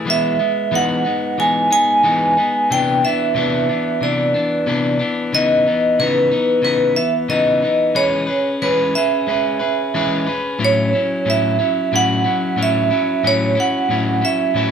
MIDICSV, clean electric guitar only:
0, 0, Header, 1, 2, 480
1, 0, Start_track
1, 0, Tempo, 659413
1, 39, Time_signature, 4, 2, 24, 8
1, 10708, End_track
2, 0, Start_track
2, 0, Title_t, "Clean electric guitar"
2, 0, Program_c, 0, 27
2, 39, Note_on_c, 0, 52, 75
2, 50, Note_on_c, 0, 56, 76
2, 57, Note_on_c, 0, 59, 73
2, 275, Note_off_c, 0, 59, 0
2, 279, Note_off_c, 0, 52, 0
2, 283, Note_on_c, 0, 59, 43
2, 285, Note_off_c, 0, 56, 0
2, 292, Note_on_c, 0, 56, 40
2, 517, Note_off_c, 0, 56, 0
2, 517, Note_off_c, 0, 59, 0
2, 520, Note_on_c, 0, 52, 77
2, 525, Note_on_c, 0, 59, 79
2, 526, Note_on_c, 0, 56, 79
2, 534, Note_on_c, 0, 63, 81
2, 750, Note_off_c, 0, 63, 0
2, 759, Note_off_c, 0, 52, 0
2, 759, Note_on_c, 0, 63, 41
2, 761, Note_off_c, 0, 59, 0
2, 762, Note_off_c, 0, 56, 0
2, 769, Note_on_c, 0, 59, 47
2, 778, Note_on_c, 0, 56, 35
2, 999, Note_off_c, 0, 63, 0
2, 1002, Note_off_c, 0, 56, 0
2, 1003, Note_on_c, 0, 52, 51
2, 1004, Note_off_c, 0, 59, 0
2, 1011, Note_on_c, 0, 56, 51
2, 1016, Note_on_c, 0, 59, 59
2, 1021, Note_on_c, 0, 63, 60
2, 1233, Note_off_c, 0, 63, 0
2, 1241, Note_off_c, 0, 52, 0
2, 1242, Note_on_c, 0, 63, 47
2, 1245, Note_off_c, 0, 56, 0
2, 1246, Note_off_c, 0, 59, 0
2, 1254, Note_on_c, 0, 59, 45
2, 1263, Note_on_c, 0, 56, 38
2, 1478, Note_off_c, 0, 56, 0
2, 1480, Note_off_c, 0, 63, 0
2, 1484, Note_off_c, 0, 59, 0
2, 1484, Note_on_c, 0, 52, 80
2, 1487, Note_on_c, 0, 56, 80
2, 1490, Note_on_c, 0, 63, 77
2, 1493, Note_on_c, 0, 59, 76
2, 1714, Note_off_c, 0, 63, 0
2, 1721, Note_off_c, 0, 52, 0
2, 1723, Note_off_c, 0, 56, 0
2, 1723, Note_on_c, 0, 63, 49
2, 1726, Note_off_c, 0, 59, 0
2, 1734, Note_on_c, 0, 59, 41
2, 1742, Note_on_c, 0, 56, 42
2, 1961, Note_off_c, 0, 63, 0
2, 1966, Note_off_c, 0, 59, 0
2, 1970, Note_on_c, 0, 48, 75
2, 1971, Note_off_c, 0, 56, 0
2, 1977, Note_on_c, 0, 52, 73
2, 1978, Note_on_c, 0, 62, 86
2, 1979, Note_on_c, 0, 59, 84
2, 2204, Note_off_c, 0, 48, 0
2, 2205, Note_off_c, 0, 62, 0
2, 2208, Note_off_c, 0, 52, 0
2, 2209, Note_off_c, 0, 59, 0
2, 2213, Note_on_c, 0, 62, 47
2, 2222, Note_on_c, 0, 59, 47
2, 2227, Note_on_c, 0, 52, 39
2, 2436, Note_on_c, 0, 48, 72
2, 2437, Note_off_c, 0, 52, 0
2, 2440, Note_off_c, 0, 59, 0
2, 2446, Note_off_c, 0, 62, 0
2, 2446, Note_on_c, 0, 52, 88
2, 2448, Note_on_c, 0, 59, 89
2, 2456, Note_on_c, 0, 62, 84
2, 2677, Note_off_c, 0, 62, 0
2, 2678, Note_off_c, 0, 48, 0
2, 2680, Note_off_c, 0, 59, 0
2, 2682, Note_off_c, 0, 52, 0
2, 2686, Note_on_c, 0, 62, 42
2, 2688, Note_on_c, 0, 59, 39
2, 2698, Note_on_c, 0, 52, 35
2, 2919, Note_off_c, 0, 52, 0
2, 2919, Note_on_c, 0, 48, 55
2, 2922, Note_off_c, 0, 62, 0
2, 2924, Note_off_c, 0, 59, 0
2, 2928, Note_on_c, 0, 52, 58
2, 2933, Note_on_c, 0, 59, 52
2, 2939, Note_on_c, 0, 62, 54
2, 3151, Note_off_c, 0, 62, 0
2, 3159, Note_off_c, 0, 48, 0
2, 3160, Note_off_c, 0, 59, 0
2, 3160, Note_on_c, 0, 62, 44
2, 3163, Note_off_c, 0, 52, 0
2, 3168, Note_on_c, 0, 59, 42
2, 3176, Note_on_c, 0, 52, 41
2, 3392, Note_off_c, 0, 52, 0
2, 3397, Note_off_c, 0, 59, 0
2, 3397, Note_on_c, 0, 48, 73
2, 3399, Note_off_c, 0, 62, 0
2, 3401, Note_on_c, 0, 52, 73
2, 3406, Note_on_c, 0, 59, 86
2, 3411, Note_on_c, 0, 62, 80
2, 3625, Note_off_c, 0, 62, 0
2, 3634, Note_off_c, 0, 59, 0
2, 3634, Note_on_c, 0, 62, 52
2, 3638, Note_off_c, 0, 48, 0
2, 3640, Note_off_c, 0, 52, 0
2, 3643, Note_on_c, 0, 59, 48
2, 3655, Note_on_c, 0, 52, 45
2, 3876, Note_off_c, 0, 62, 0
2, 3879, Note_on_c, 0, 49, 65
2, 3880, Note_off_c, 0, 52, 0
2, 3881, Note_off_c, 0, 59, 0
2, 3888, Note_on_c, 0, 52, 69
2, 3889, Note_on_c, 0, 59, 72
2, 3893, Note_on_c, 0, 63, 82
2, 4115, Note_off_c, 0, 63, 0
2, 4119, Note_off_c, 0, 49, 0
2, 4124, Note_off_c, 0, 52, 0
2, 4124, Note_off_c, 0, 59, 0
2, 4124, Note_on_c, 0, 63, 43
2, 4131, Note_on_c, 0, 59, 48
2, 4142, Note_on_c, 0, 52, 37
2, 4361, Note_off_c, 0, 52, 0
2, 4361, Note_off_c, 0, 63, 0
2, 4363, Note_on_c, 0, 49, 79
2, 4365, Note_off_c, 0, 59, 0
2, 4370, Note_on_c, 0, 52, 75
2, 4375, Note_on_c, 0, 59, 77
2, 4378, Note_on_c, 0, 63, 77
2, 4587, Note_off_c, 0, 63, 0
2, 4594, Note_off_c, 0, 59, 0
2, 4596, Note_on_c, 0, 63, 49
2, 4601, Note_off_c, 0, 49, 0
2, 4603, Note_on_c, 0, 59, 45
2, 4604, Note_off_c, 0, 52, 0
2, 4615, Note_on_c, 0, 52, 39
2, 4819, Note_on_c, 0, 49, 53
2, 4820, Note_off_c, 0, 52, 0
2, 4825, Note_off_c, 0, 59, 0
2, 4829, Note_on_c, 0, 52, 56
2, 4834, Note_on_c, 0, 59, 57
2, 4835, Note_off_c, 0, 63, 0
2, 4844, Note_on_c, 0, 63, 58
2, 5064, Note_off_c, 0, 59, 0
2, 5068, Note_off_c, 0, 52, 0
2, 5069, Note_off_c, 0, 49, 0
2, 5073, Note_on_c, 0, 59, 40
2, 5077, Note_on_c, 0, 52, 37
2, 5081, Note_off_c, 0, 63, 0
2, 5302, Note_off_c, 0, 52, 0
2, 5305, Note_on_c, 0, 49, 66
2, 5311, Note_off_c, 0, 59, 0
2, 5311, Note_on_c, 0, 52, 75
2, 5320, Note_on_c, 0, 59, 89
2, 5321, Note_on_c, 0, 63, 86
2, 5539, Note_off_c, 0, 63, 0
2, 5548, Note_on_c, 0, 63, 45
2, 5552, Note_off_c, 0, 49, 0
2, 5554, Note_off_c, 0, 59, 0
2, 5555, Note_off_c, 0, 52, 0
2, 5563, Note_on_c, 0, 59, 43
2, 5566, Note_on_c, 0, 52, 37
2, 5779, Note_off_c, 0, 52, 0
2, 5788, Note_on_c, 0, 52, 66
2, 5788, Note_on_c, 0, 56, 72
2, 5790, Note_off_c, 0, 63, 0
2, 5793, Note_off_c, 0, 59, 0
2, 5793, Note_on_c, 0, 68, 80
2, 5796, Note_on_c, 0, 61, 72
2, 5796, Note_on_c, 0, 71, 73
2, 6009, Note_off_c, 0, 71, 0
2, 6018, Note_on_c, 0, 71, 52
2, 6019, Note_off_c, 0, 68, 0
2, 6028, Note_on_c, 0, 68, 44
2, 6033, Note_off_c, 0, 52, 0
2, 6033, Note_off_c, 0, 56, 0
2, 6035, Note_off_c, 0, 61, 0
2, 6043, Note_on_c, 0, 61, 41
2, 6268, Note_off_c, 0, 71, 0
2, 6272, Note_off_c, 0, 61, 0
2, 6273, Note_off_c, 0, 68, 0
2, 6275, Note_on_c, 0, 52, 68
2, 6275, Note_on_c, 0, 56, 74
2, 6280, Note_on_c, 0, 61, 81
2, 6284, Note_on_c, 0, 68, 84
2, 6286, Note_on_c, 0, 71, 90
2, 6508, Note_off_c, 0, 71, 0
2, 6517, Note_off_c, 0, 52, 0
2, 6517, Note_off_c, 0, 56, 0
2, 6517, Note_on_c, 0, 71, 51
2, 6520, Note_off_c, 0, 61, 0
2, 6521, Note_off_c, 0, 68, 0
2, 6531, Note_on_c, 0, 68, 45
2, 6535, Note_on_c, 0, 61, 42
2, 6746, Note_off_c, 0, 61, 0
2, 6748, Note_on_c, 0, 56, 48
2, 6751, Note_off_c, 0, 68, 0
2, 6755, Note_on_c, 0, 61, 56
2, 6758, Note_off_c, 0, 71, 0
2, 6760, Note_on_c, 0, 68, 48
2, 6770, Note_on_c, 0, 71, 55
2, 6975, Note_off_c, 0, 71, 0
2, 6984, Note_on_c, 0, 71, 46
2, 6989, Note_off_c, 0, 68, 0
2, 6993, Note_off_c, 0, 56, 0
2, 6993, Note_off_c, 0, 61, 0
2, 6997, Note_on_c, 0, 68, 42
2, 7002, Note_on_c, 0, 61, 38
2, 7231, Note_off_c, 0, 61, 0
2, 7231, Note_off_c, 0, 71, 0
2, 7237, Note_on_c, 0, 52, 89
2, 7238, Note_off_c, 0, 68, 0
2, 7240, Note_on_c, 0, 61, 89
2, 7243, Note_on_c, 0, 56, 89
2, 7248, Note_on_c, 0, 68, 93
2, 7250, Note_on_c, 0, 71, 84
2, 7462, Note_off_c, 0, 71, 0
2, 7468, Note_off_c, 0, 68, 0
2, 7471, Note_on_c, 0, 71, 50
2, 7477, Note_off_c, 0, 61, 0
2, 7477, Note_on_c, 0, 68, 46
2, 7478, Note_off_c, 0, 52, 0
2, 7481, Note_off_c, 0, 56, 0
2, 7486, Note_on_c, 0, 61, 43
2, 7708, Note_on_c, 0, 45, 78
2, 7709, Note_off_c, 0, 61, 0
2, 7711, Note_on_c, 0, 54, 75
2, 7715, Note_off_c, 0, 71, 0
2, 7716, Note_off_c, 0, 68, 0
2, 7718, Note_on_c, 0, 61, 73
2, 7719, Note_on_c, 0, 64, 77
2, 7949, Note_off_c, 0, 64, 0
2, 7953, Note_off_c, 0, 45, 0
2, 7955, Note_off_c, 0, 54, 0
2, 7958, Note_off_c, 0, 61, 0
2, 7958, Note_on_c, 0, 64, 46
2, 7972, Note_on_c, 0, 61, 47
2, 7976, Note_on_c, 0, 54, 41
2, 8187, Note_off_c, 0, 54, 0
2, 8193, Note_off_c, 0, 61, 0
2, 8194, Note_on_c, 0, 45, 58
2, 8196, Note_on_c, 0, 54, 58
2, 8198, Note_off_c, 0, 64, 0
2, 8202, Note_on_c, 0, 61, 65
2, 8214, Note_on_c, 0, 64, 65
2, 8427, Note_off_c, 0, 64, 0
2, 8434, Note_off_c, 0, 61, 0
2, 8436, Note_off_c, 0, 45, 0
2, 8436, Note_on_c, 0, 64, 47
2, 8437, Note_off_c, 0, 54, 0
2, 8443, Note_on_c, 0, 61, 39
2, 8450, Note_on_c, 0, 54, 37
2, 8674, Note_off_c, 0, 54, 0
2, 8676, Note_on_c, 0, 45, 60
2, 8677, Note_off_c, 0, 64, 0
2, 8681, Note_off_c, 0, 61, 0
2, 8683, Note_on_c, 0, 54, 72
2, 8689, Note_on_c, 0, 64, 68
2, 8691, Note_on_c, 0, 61, 75
2, 8900, Note_off_c, 0, 64, 0
2, 8909, Note_on_c, 0, 64, 49
2, 8914, Note_off_c, 0, 61, 0
2, 8917, Note_off_c, 0, 45, 0
2, 8919, Note_off_c, 0, 54, 0
2, 8923, Note_on_c, 0, 61, 47
2, 8927, Note_on_c, 0, 54, 45
2, 9143, Note_on_c, 0, 45, 53
2, 9145, Note_off_c, 0, 54, 0
2, 9148, Note_off_c, 0, 61, 0
2, 9151, Note_off_c, 0, 64, 0
2, 9153, Note_on_c, 0, 54, 64
2, 9157, Note_on_c, 0, 61, 68
2, 9160, Note_on_c, 0, 64, 64
2, 9382, Note_off_c, 0, 64, 0
2, 9391, Note_off_c, 0, 45, 0
2, 9391, Note_off_c, 0, 61, 0
2, 9391, Note_on_c, 0, 64, 53
2, 9396, Note_off_c, 0, 54, 0
2, 9399, Note_on_c, 0, 61, 49
2, 9408, Note_on_c, 0, 54, 45
2, 9631, Note_off_c, 0, 54, 0
2, 9632, Note_off_c, 0, 61, 0
2, 9635, Note_off_c, 0, 64, 0
2, 9635, Note_on_c, 0, 45, 67
2, 9640, Note_on_c, 0, 54, 73
2, 9640, Note_on_c, 0, 61, 81
2, 9650, Note_on_c, 0, 64, 77
2, 9856, Note_off_c, 0, 64, 0
2, 9864, Note_on_c, 0, 64, 47
2, 9868, Note_off_c, 0, 61, 0
2, 9874, Note_off_c, 0, 54, 0
2, 9877, Note_off_c, 0, 45, 0
2, 9877, Note_on_c, 0, 61, 47
2, 9882, Note_on_c, 0, 54, 40
2, 10111, Note_off_c, 0, 64, 0
2, 10111, Note_on_c, 0, 45, 57
2, 10112, Note_off_c, 0, 54, 0
2, 10118, Note_off_c, 0, 61, 0
2, 10121, Note_on_c, 0, 54, 65
2, 10126, Note_on_c, 0, 61, 69
2, 10130, Note_on_c, 0, 64, 68
2, 10338, Note_off_c, 0, 64, 0
2, 10346, Note_off_c, 0, 61, 0
2, 10347, Note_on_c, 0, 64, 50
2, 10355, Note_off_c, 0, 45, 0
2, 10355, Note_on_c, 0, 61, 43
2, 10360, Note_off_c, 0, 54, 0
2, 10368, Note_on_c, 0, 54, 39
2, 10587, Note_off_c, 0, 54, 0
2, 10588, Note_on_c, 0, 45, 73
2, 10591, Note_off_c, 0, 61, 0
2, 10593, Note_off_c, 0, 64, 0
2, 10596, Note_on_c, 0, 54, 75
2, 10600, Note_on_c, 0, 61, 73
2, 10600, Note_on_c, 0, 64, 75
2, 10708, Note_off_c, 0, 45, 0
2, 10708, Note_off_c, 0, 54, 0
2, 10708, Note_off_c, 0, 61, 0
2, 10708, Note_off_c, 0, 64, 0
2, 10708, End_track
0, 0, End_of_file